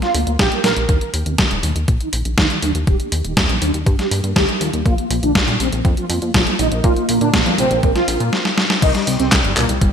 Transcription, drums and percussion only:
0.02 snare, closed hi-hat
0.15 open hi-hat
0.27 closed hi-hat
0.39 kick, snare, closed hi-hat
0.52 closed hi-hat
0.64 snare, open hi-hat
0.77 closed hi-hat
0.89 kick, closed hi-hat
1.01 closed hi-hat
1.14 open hi-hat
1.26 closed hi-hat
1.38 kick, snare, closed hi-hat
1.51 closed hi-hat
1.63 open hi-hat
1.76 closed hi-hat
1.88 kick, closed hi-hat
2.00 closed hi-hat
2.13 open hi-hat
2.25 closed hi-hat
2.38 kick, snare, closed hi-hat
2.50 closed hi-hat
2.62 open hi-hat
2.75 closed hi-hat
2.87 kick, closed hi-hat
3.00 closed hi-hat
3.12 open hi-hat
3.25 closed hi-hat
3.37 kick, snare, closed hi-hat
3.49 closed hi-hat
3.62 open hi-hat
3.74 closed hi-hat
3.86 kick, closed hi-hat
3.99 snare, closed hi-hat
4.11 open hi-hat
4.24 closed hi-hat
4.36 kick, snare, closed hi-hat
4.49 closed hi-hat
4.61 open hi-hat
4.73 closed hi-hat
4.86 kick, closed hi-hat
4.98 closed hi-hat
5.11 open hi-hat
5.23 closed hi-hat
5.35 kick, snare, closed hi-hat
5.48 closed hi-hat
5.60 open hi-hat
5.72 closed hi-hat
5.85 kick, closed hi-hat
5.97 closed hi-hat
6.10 open hi-hat
6.22 closed hi-hat
6.34 kick, snare, closed hi-hat
6.47 closed hi-hat
6.59 open hi-hat
6.72 closed hi-hat
6.84 kick, closed hi-hat
6.96 closed hi-hat
7.09 open hi-hat
7.21 closed hi-hat
7.34 kick, snare, closed hi-hat
7.46 closed hi-hat
7.58 open hi-hat
7.71 closed hi-hat
7.83 kick, closed hi-hat
7.96 snare, closed hi-hat
8.08 open hi-hat
8.20 closed hi-hat
8.33 snare
8.45 snare
8.58 snare
8.70 snare
8.82 kick, closed hi-hat, crash
8.95 snare, closed hi-hat
9.07 open hi-hat
9.20 closed hi-hat
9.32 kick, snare, clap, closed hi-hat
9.44 closed hi-hat
9.57 clap, open hi-hat
9.69 closed hi-hat
9.81 kick, closed hi-hat

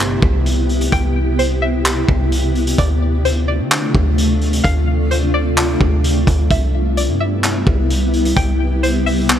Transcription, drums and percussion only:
0.00 clap
0.22 kick
0.46 closed hi-hat
0.69 closed hi-hat
0.81 closed hi-hat
0.92 kick, closed hi-hat
1.39 closed hi-hat
1.85 clap, closed hi-hat
2.09 kick
2.32 closed hi-hat
2.55 closed hi-hat
2.67 closed hi-hat
2.78 kick, closed hi-hat
3.25 closed hi-hat
3.72 clap, closed hi-hat
3.95 kick
4.18 closed hi-hat
4.41 closed hi-hat
4.53 closed hi-hat
4.64 kick, closed hi-hat
5.11 closed hi-hat
5.58 clap, closed hi-hat
5.81 kick
6.04 closed hi-hat
6.27 kick, closed hi-hat
6.51 kick, closed hi-hat
6.97 closed hi-hat
7.44 clap, closed hi-hat
7.67 kick
7.90 closed hi-hat
8.13 closed hi-hat
8.25 closed hi-hat
8.37 kick, closed hi-hat
8.83 closed hi-hat
9.06 open hi-hat
9.30 clap, closed hi-hat

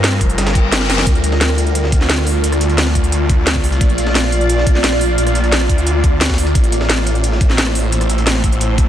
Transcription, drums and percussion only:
0.04 snare, closed hi-hat, open hi-hat
0.12 cross-stick
0.21 kick, closed hi-hat
0.30 closed hi-hat
0.38 snare, closed hi-hat
0.47 snare, closed hi-hat
0.55 kick, closed hi-hat
0.72 snare, closed hi-hat
0.81 snare
0.90 snare, closed hi-hat, open hi-hat
0.98 snare, closed hi-hat
1.07 kick, closed hi-hat
1.15 closed hi-hat
1.24 closed hi-hat
1.32 snare
1.41 snare, closed hi-hat
1.50 cross-stick
1.58 closed hi-hat
1.67 closed hi-hat
1.75 closed hi-hat
1.84 snare
1.92 kick, closed hi-hat
2.01 snare
2.09 snare, closed hi-hat
2.18 cross-stick
2.27 closed hi-hat, open hi-hat
2.44 closed hi-hat
2.52 cross-stick, closed hi-hat
2.61 closed hi-hat
2.69 closed hi-hat
2.78 snare, closed hi-hat, open hi-hat
2.87 cross-stick
2.95 kick, closed hi-hat
3.04 closed hi-hat
3.12 closed hi-hat
3.29 kick, closed hi-hat
3.47 snare, closed hi-hat
3.55 kick
3.64 closed hi-hat, open hi-hat
3.72 closed hi-hat
3.81 kick, closed hi-hat
3.90 closed hi-hat
3.98 closed hi-hat
4.07 snare
4.15 snare, closed hi-hat
4.24 cross-stick
4.32 closed hi-hat
4.41 closed hi-hat
4.49 closed hi-hat
4.58 snare
4.67 kick, closed hi-hat
4.75 snare
4.84 snare, closed hi-hat
4.92 cross-stick
5.01 closed hi-hat, open hi-hat
5.18 closed hi-hat
5.27 cross-stick, closed hi-hat
5.35 closed hi-hat
5.44 closed hi-hat
5.52 snare, closed hi-hat, open hi-hat
5.61 cross-stick
5.69 kick, closed hi-hat
5.78 closed hi-hat
5.87 closed hi-hat
6.04 kick, closed hi-hat
6.21 snare, closed hi-hat
6.25 snare, closed hi-hat
6.29 kick, snare, closed hi-hat
6.34 snare, closed hi-hat
6.38 closed hi-hat, open hi-hat
6.47 closed hi-hat
6.55 kick, closed hi-hat
6.64 closed hi-hat
6.72 closed hi-hat
6.81 snare
6.89 snare, closed hi-hat
6.98 cross-stick
7.07 closed hi-hat
7.15 closed hi-hat
7.24 closed hi-hat
7.32 snare
7.41 kick, closed hi-hat
7.50 snare
7.58 snare, closed hi-hat
7.67 cross-stick
7.75 closed hi-hat, open hi-hat
7.92 closed hi-hat
8.01 cross-stick, closed hi-hat
8.09 closed hi-hat
8.18 closed hi-hat
8.27 snare, closed hi-hat, open hi-hat
8.35 cross-stick
8.44 kick, closed hi-hat
8.52 closed hi-hat
8.61 closed hi-hat
8.78 kick, closed hi-hat

